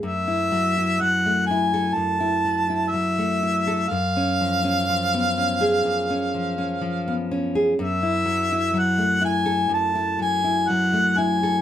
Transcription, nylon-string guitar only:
\new Staff \with { instrumentName = "Nylon-string guitar" } { \time 4/4 \key fis \minor \tempo 4 = 62 << { a16 e'8 e'8 a16 e'16 a'8 e'8 e'8 a16 e'16 a'16 | r16 cis'8 cis'8 b16 cis'16 gis'8 cis'8 cis'8 b16 cis'16 gis'16 | r16 e'8 e'8 a16 e'16 a'8 e'8 e'8 a16 e'16 a'16 | } \\ { fis,8 fis8 fis4 fis,8 fis8 fis4 | fis,8 eis8 eis4 fis,8 eis8 eis4 | fis,8 fis8 fis4 fis,8 fis8 fis4 | } >> }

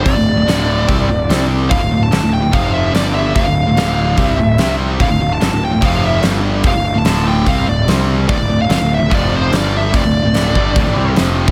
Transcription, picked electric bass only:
\new Staff \with { instrumentName = "Picked electric bass" } { \clef bass \time 4/4 \key d \minor \tempo 4 = 146 f,,16 d,,8 d,,16 d,,4 c,8 d,,8 c,4 | d,,16 d,,16 d,,8 g,,16 d,,8 d,,16 f,,4 g,,4 | f,,16 d,,8 d,,16 d,,4 c,8 d,,8 c,4 | d,,16 d,,16 d,,8 g,,16 d,,8 d,,16 f,,4 g,,4 |
f,,16 d,,8 d,,16 d,,4 c,8 d,,8 c,4 | d,,16 d,,16 d,,8 g,,16 d,,8 d,,16 f,,4 g,,4 | f,,16 d,,8 d,,16 d,,8 g,,8 d,,16 a,,16 c,8 f,,8. c,16 | }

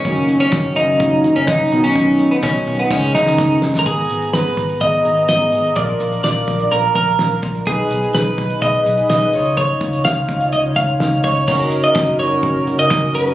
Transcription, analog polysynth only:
\new Staff \with { instrumentName = "Analog polysynth" } { \time 4/4 \key fis \major \tempo 4 = 126 <dis fis ais cis'>2.~ <dis fis ais cis'>8 <dis fis b dis'>8~ | <dis fis b dis'>2 <dis gis cis' dis'>2 | <b gis' ais''>1 | <d' eis' ais'>1 |
<dis' gis' b'>2.~ <dis' gis' b'>8 <dis' eis' cis''>8~ | <dis' eis' cis''>1 | <cis' dis' fis' ais'>1 | }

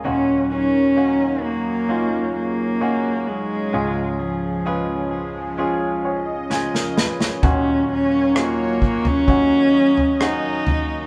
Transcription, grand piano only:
<<
  \new Staff \with { instrumentName = "Grand piano" } { \time 4/4 \key dis \minor \tempo 4 = 65 << { r1 | r2 r8 cis''8 <eis' gis' gis''>16 ais'16 <gis' b'>16 <ais' cis''>16~ | <ais' cis''>16 r2. r8. | } \\ { <cis' dis' fis'>4 <cis' dis' fis'>4 <cis' dis' eis'>4 <cis' dis' fis'>4 | <cis' eis' gis'>4 <cis' eis' b'>4 <cis' eis' gis'>4 r4 | <cis' dis' fis'>4 <cis' dis' eis'>4 <cis' dis' fis'>4 <cis' dis' fis'>4 | } >> }
  \new Staff \with { instrumentName = "Grand piano" } { \clef bass \time 4/4 \key dis \minor <dis, ais,>1 | <cis, gis,>1 | <dis, ais,>1 | }
>>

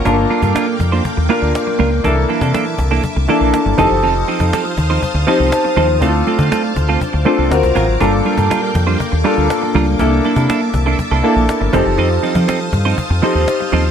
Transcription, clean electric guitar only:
\new Staff \with { instrumentName = "Clean electric guitar" } { \time 4/4 \key g \minor \tempo 4 = 121 <bes d' f' bes'>8 <bes d' f' bes'>16 <bes d' f' bes'>16 <bes d' f' bes'>8 r16 <bes d' f' c''>16 r8 <bes d' f' bes'>16 <bes d' f' bes'>16 r8 <bes d' f' bes'>8 | <e bes d' a'>8 <e bes d' a'>16 <e bes d' a'>16 <e bes d' a'>8 r16 <e bes d' a'>16 r8 <e bes d' a'>16 <e bes d' a'>16 r8 <f c' ees' a'>8 | <f c' ees' a'>8 <f c' ees' a'>16 <f c' ees' a'>16 <f c' ees' a'>8 r16 <f c' ees' c''>16 r8 <f c' ees' a'>16 <f c' ees' a'>16 r8 <f c' ees' a'>8 | <a c' f' a'>8 <a c' f' a'>16 <a c' f' a'>16 <a c' f' a'>8 r16 <a c' f' a'>16 r8 <a c' f' a'>16 <a c' f' a'>16 r8 <fis c' eis' ais'>8 |
<g d' f' bes'>8 <g d' f' bes'>16 <g d' f' bes'>16 <g d' f' bes'>8 r16 <g d' f' c''>16 r8 <g d' f' bes'>16 <g d' f' bes'>16 r8 <g d' f' bes'>8 | <bes d' e' a'>8 <bes d' e' a'>16 <bes d' e' a'>16 <bes d' e' a'>8 r16 <bes d' e' a'>16 r16 <bes d' e' a'>16 <bes d' e' a'>8 r8 <f c' ees' a'>8 | <f c' ees' a'>8 <f c' ees' a'>16 <f c' ees' a'>16 <f c' ees' a'>8 r16 <f c' ees' c''>16 r8 <f c' ees' a'>16 <f c' ees' a'>16 r8 <f c' ees' a'>8 | }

